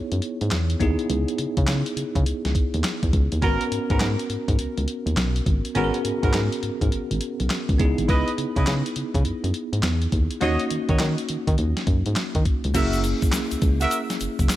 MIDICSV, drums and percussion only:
0, 0, Header, 1, 2, 480
1, 0, Start_track
1, 0, Key_signature, 5, "minor"
1, 0, Tempo, 582524
1, 902, Time_signature, 4, 2, 24, 8
1, 11999, End_track
2, 0, Start_track
2, 0, Title_t, "Drums"
2, 96, Note_on_c, 9, 42, 46
2, 178, Note_off_c, 9, 42, 0
2, 182, Note_on_c, 9, 42, 62
2, 264, Note_off_c, 9, 42, 0
2, 339, Note_on_c, 9, 42, 42
2, 419, Note_on_c, 9, 39, 78
2, 421, Note_off_c, 9, 42, 0
2, 423, Note_on_c, 9, 42, 69
2, 425, Note_on_c, 9, 38, 101
2, 501, Note_off_c, 9, 39, 0
2, 505, Note_off_c, 9, 42, 0
2, 507, Note_off_c, 9, 38, 0
2, 575, Note_on_c, 9, 42, 48
2, 658, Note_off_c, 9, 42, 0
2, 662, Note_on_c, 9, 36, 90
2, 665, Note_on_c, 9, 42, 61
2, 744, Note_off_c, 9, 36, 0
2, 747, Note_off_c, 9, 42, 0
2, 815, Note_on_c, 9, 42, 47
2, 897, Note_off_c, 9, 42, 0
2, 903, Note_on_c, 9, 42, 70
2, 986, Note_off_c, 9, 42, 0
2, 1058, Note_on_c, 9, 42, 45
2, 1140, Note_off_c, 9, 42, 0
2, 1141, Note_on_c, 9, 42, 76
2, 1223, Note_off_c, 9, 42, 0
2, 1294, Note_on_c, 9, 42, 53
2, 1295, Note_on_c, 9, 36, 91
2, 1376, Note_off_c, 9, 42, 0
2, 1376, Note_on_c, 9, 39, 77
2, 1377, Note_off_c, 9, 36, 0
2, 1382, Note_on_c, 9, 38, 99
2, 1382, Note_on_c, 9, 42, 61
2, 1458, Note_off_c, 9, 39, 0
2, 1464, Note_off_c, 9, 38, 0
2, 1464, Note_off_c, 9, 42, 0
2, 1534, Note_on_c, 9, 42, 49
2, 1617, Note_off_c, 9, 42, 0
2, 1623, Note_on_c, 9, 42, 68
2, 1706, Note_off_c, 9, 42, 0
2, 1775, Note_on_c, 9, 36, 86
2, 1778, Note_on_c, 9, 42, 54
2, 1858, Note_off_c, 9, 36, 0
2, 1861, Note_off_c, 9, 42, 0
2, 1865, Note_on_c, 9, 42, 70
2, 1947, Note_off_c, 9, 42, 0
2, 2019, Note_on_c, 9, 38, 63
2, 2019, Note_on_c, 9, 42, 45
2, 2101, Note_off_c, 9, 38, 0
2, 2101, Note_on_c, 9, 36, 87
2, 2102, Note_off_c, 9, 42, 0
2, 2105, Note_on_c, 9, 42, 63
2, 2183, Note_off_c, 9, 36, 0
2, 2187, Note_off_c, 9, 42, 0
2, 2257, Note_on_c, 9, 42, 49
2, 2337, Note_on_c, 9, 39, 79
2, 2339, Note_off_c, 9, 42, 0
2, 2341, Note_on_c, 9, 42, 75
2, 2343, Note_on_c, 9, 38, 103
2, 2419, Note_off_c, 9, 39, 0
2, 2423, Note_off_c, 9, 42, 0
2, 2425, Note_off_c, 9, 38, 0
2, 2495, Note_on_c, 9, 36, 81
2, 2495, Note_on_c, 9, 42, 47
2, 2577, Note_off_c, 9, 36, 0
2, 2577, Note_off_c, 9, 42, 0
2, 2581, Note_on_c, 9, 36, 93
2, 2581, Note_on_c, 9, 42, 65
2, 2663, Note_off_c, 9, 36, 0
2, 2663, Note_off_c, 9, 42, 0
2, 2734, Note_on_c, 9, 42, 48
2, 2817, Note_off_c, 9, 42, 0
2, 2821, Note_on_c, 9, 36, 98
2, 2821, Note_on_c, 9, 42, 66
2, 2903, Note_off_c, 9, 36, 0
2, 2903, Note_off_c, 9, 42, 0
2, 2973, Note_on_c, 9, 42, 50
2, 3056, Note_off_c, 9, 42, 0
2, 3064, Note_on_c, 9, 42, 75
2, 3147, Note_off_c, 9, 42, 0
2, 3214, Note_on_c, 9, 42, 47
2, 3215, Note_on_c, 9, 36, 98
2, 3294, Note_on_c, 9, 39, 81
2, 3296, Note_off_c, 9, 42, 0
2, 3297, Note_off_c, 9, 36, 0
2, 3300, Note_on_c, 9, 38, 97
2, 3301, Note_on_c, 9, 42, 66
2, 3377, Note_off_c, 9, 39, 0
2, 3383, Note_off_c, 9, 38, 0
2, 3383, Note_off_c, 9, 42, 0
2, 3456, Note_on_c, 9, 42, 49
2, 3538, Note_off_c, 9, 42, 0
2, 3541, Note_on_c, 9, 42, 65
2, 3624, Note_off_c, 9, 42, 0
2, 3693, Note_on_c, 9, 36, 86
2, 3695, Note_on_c, 9, 42, 55
2, 3776, Note_off_c, 9, 36, 0
2, 3778, Note_off_c, 9, 42, 0
2, 3780, Note_on_c, 9, 42, 73
2, 3862, Note_off_c, 9, 42, 0
2, 3935, Note_on_c, 9, 42, 50
2, 4017, Note_off_c, 9, 42, 0
2, 4019, Note_on_c, 9, 42, 62
2, 4102, Note_off_c, 9, 42, 0
2, 4175, Note_on_c, 9, 42, 45
2, 4258, Note_off_c, 9, 42, 0
2, 4258, Note_on_c, 9, 39, 79
2, 4262, Note_on_c, 9, 42, 67
2, 4264, Note_on_c, 9, 38, 98
2, 4340, Note_off_c, 9, 39, 0
2, 4344, Note_off_c, 9, 42, 0
2, 4346, Note_off_c, 9, 38, 0
2, 4416, Note_on_c, 9, 42, 43
2, 4498, Note_off_c, 9, 42, 0
2, 4502, Note_on_c, 9, 36, 88
2, 4503, Note_on_c, 9, 42, 64
2, 4584, Note_off_c, 9, 36, 0
2, 4586, Note_off_c, 9, 42, 0
2, 4655, Note_on_c, 9, 42, 49
2, 4737, Note_off_c, 9, 42, 0
2, 4739, Note_on_c, 9, 42, 65
2, 4822, Note_off_c, 9, 42, 0
2, 4896, Note_on_c, 9, 42, 45
2, 4978, Note_off_c, 9, 42, 0
2, 4983, Note_on_c, 9, 42, 76
2, 5066, Note_off_c, 9, 42, 0
2, 5135, Note_on_c, 9, 36, 93
2, 5136, Note_on_c, 9, 42, 46
2, 5217, Note_off_c, 9, 36, 0
2, 5217, Note_on_c, 9, 39, 77
2, 5218, Note_off_c, 9, 42, 0
2, 5223, Note_on_c, 9, 38, 99
2, 5223, Note_on_c, 9, 42, 60
2, 5299, Note_off_c, 9, 39, 0
2, 5305, Note_off_c, 9, 38, 0
2, 5305, Note_off_c, 9, 42, 0
2, 5376, Note_on_c, 9, 42, 50
2, 5459, Note_off_c, 9, 42, 0
2, 5461, Note_on_c, 9, 42, 65
2, 5544, Note_off_c, 9, 42, 0
2, 5615, Note_on_c, 9, 36, 81
2, 5618, Note_on_c, 9, 42, 59
2, 5697, Note_off_c, 9, 36, 0
2, 5701, Note_off_c, 9, 42, 0
2, 5703, Note_on_c, 9, 42, 73
2, 5785, Note_off_c, 9, 42, 0
2, 5859, Note_on_c, 9, 42, 49
2, 5938, Note_off_c, 9, 42, 0
2, 5938, Note_on_c, 9, 42, 68
2, 6021, Note_off_c, 9, 42, 0
2, 6097, Note_on_c, 9, 42, 49
2, 6178, Note_on_c, 9, 39, 77
2, 6179, Note_off_c, 9, 42, 0
2, 6182, Note_on_c, 9, 42, 65
2, 6184, Note_on_c, 9, 38, 99
2, 6260, Note_off_c, 9, 39, 0
2, 6264, Note_off_c, 9, 42, 0
2, 6266, Note_off_c, 9, 38, 0
2, 6336, Note_on_c, 9, 36, 80
2, 6338, Note_on_c, 9, 42, 50
2, 6419, Note_off_c, 9, 36, 0
2, 6421, Note_off_c, 9, 42, 0
2, 6423, Note_on_c, 9, 36, 88
2, 6424, Note_on_c, 9, 42, 61
2, 6505, Note_off_c, 9, 36, 0
2, 6506, Note_off_c, 9, 42, 0
2, 6578, Note_on_c, 9, 42, 50
2, 6661, Note_off_c, 9, 42, 0
2, 6664, Note_on_c, 9, 36, 103
2, 6666, Note_on_c, 9, 42, 67
2, 6746, Note_off_c, 9, 36, 0
2, 6749, Note_off_c, 9, 42, 0
2, 6820, Note_on_c, 9, 42, 47
2, 6903, Note_off_c, 9, 42, 0
2, 6907, Note_on_c, 9, 42, 76
2, 6989, Note_off_c, 9, 42, 0
2, 7057, Note_on_c, 9, 36, 88
2, 7058, Note_on_c, 9, 42, 51
2, 7139, Note_off_c, 9, 36, 0
2, 7139, Note_on_c, 9, 39, 82
2, 7141, Note_off_c, 9, 42, 0
2, 7145, Note_on_c, 9, 38, 104
2, 7145, Note_on_c, 9, 42, 62
2, 7222, Note_off_c, 9, 39, 0
2, 7228, Note_off_c, 9, 38, 0
2, 7228, Note_off_c, 9, 42, 0
2, 7301, Note_on_c, 9, 42, 54
2, 7382, Note_off_c, 9, 42, 0
2, 7382, Note_on_c, 9, 42, 66
2, 7465, Note_off_c, 9, 42, 0
2, 7535, Note_on_c, 9, 36, 89
2, 7539, Note_on_c, 9, 42, 58
2, 7618, Note_off_c, 9, 36, 0
2, 7622, Note_off_c, 9, 42, 0
2, 7622, Note_on_c, 9, 42, 70
2, 7704, Note_off_c, 9, 42, 0
2, 7780, Note_on_c, 9, 42, 46
2, 7861, Note_off_c, 9, 42, 0
2, 7861, Note_on_c, 9, 42, 65
2, 7944, Note_off_c, 9, 42, 0
2, 8018, Note_on_c, 9, 42, 49
2, 8097, Note_on_c, 9, 39, 81
2, 8100, Note_off_c, 9, 42, 0
2, 8101, Note_on_c, 9, 42, 69
2, 8103, Note_on_c, 9, 38, 98
2, 8180, Note_off_c, 9, 39, 0
2, 8184, Note_off_c, 9, 42, 0
2, 8186, Note_off_c, 9, 38, 0
2, 8254, Note_on_c, 9, 42, 46
2, 8336, Note_off_c, 9, 42, 0
2, 8341, Note_on_c, 9, 42, 60
2, 8342, Note_on_c, 9, 36, 95
2, 8424, Note_off_c, 9, 36, 0
2, 8424, Note_off_c, 9, 42, 0
2, 8492, Note_on_c, 9, 42, 49
2, 8574, Note_off_c, 9, 42, 0
2, 8579, Note_on_c, 9, 42, 68
2, 8661, Note_off_c, 9, 42, 0
2, 8730, Note_on_c, 9, 42, 46
2, 8813, Note_off_c, 9, 42, 0
2, 8821, Note_on_c, 9, 42, 75
2, 8903, Note_off_c, 9, 42, 0
2, 8971, Note_on_c, 9, 42, 47
2, 8974, Note_on_c, 9, 36, 86
2, 9053, Note_off_c, 9, 42, 0
2, 9055, Note_on_c, 9, 39, 82
2, 9057, Note_off_c, 9, 36, 0
2, 9061, Note_on_c, 9, 38, 100
2, 9062, Note_on_c, 9, 42, 59
2, 9138, Note_off_c, 9, 39, 0
2, 9144, Note_off_c, 9, 38, 0
2, 9144, Note_off_c, 9, 42, 0
2, 9213, Note_on_c, 9, 42, 53
2, 9296, Note_off_c, 9, 42, 0
2, 9300, Note_on_c, 9, 42, 71
2, 9382, Note_off_c, 9, 42, 0
2, 9455, Note_on_c, 9, 36, 89
2, 9457, Note_on_c, 9, 42, 59
2, 9537, Note_off_c, 9, 36, 0
2, 9539, Note_off_c, 9, 42, 0
2, 9541, Note_on_c, 9, 42, 71
2, 9624, Note_off_c, 9, 42, 0
2, 9697, Note_on_c, 9, 38, 67
2, 9697, Note_on_c, 9, 42, 49
2, 9779, Note_off_c, 9, 38, 0
2, 9779, Note_off_c, 9, 42, 0
2, 9780, Note_on_c, 9, 42, 65
2, 9781, Note_on_c, 9, 36, 84
2, 9862, Note_off_c, 9, 42, 0
2, 9863, Note_off_c, 9, 36, 0
2, 9935, Note_on_c, 9, 42, 47
2, 10017, Note_on_c, 9, 39, 82
2, 10018, Note_off_c, 9, 42, 0
2, 10021, Note_on_c, 9, 42, 70
2, 10023, Note_on_c, 9, 38, 102
2, 10100, Note_off_c, 9, 39, 0
2, 10104, Note_off_c, 9, 42, 0
2, 10106, Note_off_c, 9, 38, 0
2, 10175, Note_on_c, 9, 42, 49
2, 10176, Note_on_c, 9, 36, 74
2, 10258, Note_off_c, 9, 36, 0
2, 10258, Note_off_c, 9, 42, 0
2, 10262, Note_on_c, 9, 36, 89
2, 10262, Note_on_c, 9, 42, 65
2, 10345, Note_off_c, 9, 36, 0
2, 10345, Note_off_c, 9, 42, 0
2, 10416, Note_on_c, 9, 42, 51
2, 10499, Note_off_c, 9, 42, 0
2, 10502, Note_on_c, 9, 42, 70
2, 10502, Note_on_c, 9, 49, 88
2, 10503, Note_on_c, 9, 36, 97
2, 10503, Note_on_c, 9, 82, 59
2, 10585, Note_off_c, 9, 36, 0
2, 10585, Note_off_c, 9, 42, 0
2, 10585, Note_off_c, 9, 49, 0
2, 10585, Note_off_c, 9, 82, 0
2, 10654, Note_on_c, 9, 82, 52
2, 10656, Note_on_c, 9, 42, 45
2, 10736, Note_off_c, 9, 82, 0
2, 10738, Note_off_c, 9, 42, 0
2, 10743, Note_on_c, 9, 42, 75
2, 10743, Note_on_c, 9, 82, 50
2, 10825, Note_off_c, 9, 82, 0
2, 10826, Note_off_c, 9, 42, 0
2, 10896, Note_on_c, 9, 42, 48
2, 10897, Note_on_c, 9, 36, 95
2, 10898, Note_on_c, 9, 82, 45
2, 10975, Note_on_c, 9, 39, 84
2, 10978, Note_off_c, 9, 42, 0
2, 10979, Note_off_c, 9, 36, 0
2, 10980, Note_off_c, 9, 82, 0
2, 10981, Note_on_c, 9, 38, 100
2, 10981, Note_on_c, 9, 42, 60
2, 10984, Note_on_c, 9, 82, 71
2, 11058, Note_off_c, 9, 39, 0
2, 11064, Note_off_c, 9, 38, 0
2, 11064, Note_off_c, 9, 42, 0
2, 11066, Note_off_c, 9, 82, 0
2, 11135, Note_on_c, 9, 82, 46
2, 11136, Note_on_c, 9, 42, 49
2, 11217, Note_off_c, 9, 82, 0
2, 11218, Note_off_c, 9, 42, 0
2, 11221, Note_on_c, 9, 42, 64
2, 11221, Note_on_c, 9, 82, 49
2, 11223, Note_on_c, 9, 36, 92
2, 11304, Note_off_c, 9, 42, 0
2, 11304, Note_off_c, 9, 82, 0
2, 11305, Note_off_c, 9, 36, 0
2, 11377, Note_on_c, 9, 82, 47
2, 11379, Note_on_c, 9, 42, 58
2, 11459, Note_off_c, 9, 82, 0
2, 11461, Note_off_c, 9, 42, 0
2, 11463, Note_on_c, 9, 42, 74
2, 11464, Note_on_c, 9, 82, 66
2, 11546, Note_off_c, 9, 42, 0
2, 11546, Note_off_c, 9, 82, 0
2, 11619, Note_on_c, 9, 38, 67
2, 11619, Note_on_c, 9, 82, 45
2, 11620, Note_on_c, 9, 42, 47
2, 11701, Note_off_c, 9, 38, 0
2, 11702, Note_off_c, 9, 42, 0
2, 11702, Note_off_c, 9, 82, 0
2, 11703, Note_on_c, 9, 82, 44
2, 11707, Note_on_c, 9, 42, 68
2, 11785, Note_off_c, 9, 82, 0
2, 11789, Note_off_c, 9, 42, 0
2, 11859, Note_on_c, 9, 36, 95
2, 11859, Note_on_c, 9, 42, 48
2, 11859, Note_on_c, 9, 82, 41
2, 11939, Note_on_c, 9, 39, 87
2, 11941, Note_off_c, 9, 36, 0
2, 11942, Note_off_c, 9, 42, 0
2, 11942, Note_off_c, 9, 82, 0
2, 11943, Note_on_c, 9, 42, 73
2, 11945, Note_on_c, 9, 38, 105
2, 11946, Note_on_c, 9, 82, 72
2, 11999, Note_off_c, 9, 38, 0
2, 11999, Note_off_c, 9, 39, 0
2, 11999, Note_off_c, 9, 42, 0
2, 11999, Note_off_c, 9, 82, 0
2, 11999, End_track
0, 0, End_of_file